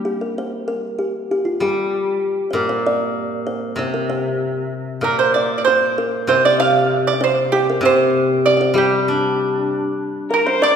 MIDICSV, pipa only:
0, 0, Header, 1, 2, 480
1, 0, Start_track
1, 0, Tempo, 621118
1, 49, Time_signature, 2, 2, 24, 8
1, 8314, End_track
2, 0, Start_track
2, 0, Title_t, "Pipa"
2, 0, Program_c, 0, 105
2, 3895, Note_on_c, 0, 70, 58
2, 4006, Note_off_c, 0, 70, 0
2, 4009, Note_on_c, 0, 72, 58
2, 4124, Note_off_c, 0, 72, 0
2, 4127, Note_on_c, 0, 74, 60
2, 4302, Note_off_c, 0, 74, 0
2, 4311, Note_on_c, 0, 74, 45
2, 4360, Note_off_c, 0, 74, 0
2, 4363, Note_on_c, 0, 72, 66
2, 4825, Note_off_c, 0, 72, 0
2, 4857, Note_on_c, 0, 72, 66
2, 4972, Note_off_c, 0, 72, 0
2, 4985, Note_on_c, 0, 74, 67
2, 5095, Note_off_c, 0, 74, 0
2, 5098, Note_on_c, 0, 77, 78
2, 5426, Note_off_c, 0, 77, 0
2, 5466, Note_on_c, 0, 74, 74
2, 5568, Note_off_c, 0, 74, 0
2, 5592, Note_on_c, 0, 72, 69
2, 5800, Note_off_c, 0, 72, 0
2, 5811, Note_on_c, 0, 67, 71
2, 6029, Note_off_c, 0, 67, 0
2, 6069, Note_on_c, 0, 72, 73
2, 6511, Note_off_c, 0, 72, 0
2, 6534, Note_on_c, 0, 74, 69
2, 6757, Note_off_c, 0, 74, 0
2, 6782, Note_on_c, 0, 67, 60
2, 7475, Note_off_c, 0, 67, 0
2, 7988, Note_on_c, 0, 70, 73
2, 8201, Note_off_c, 0, 70, 0
2, 8218, Note_on_c, 0, 74, 84
2, 8314, Note_off_c, 0, 74, 0
2, 8314, End_track
0, 0, End_of_file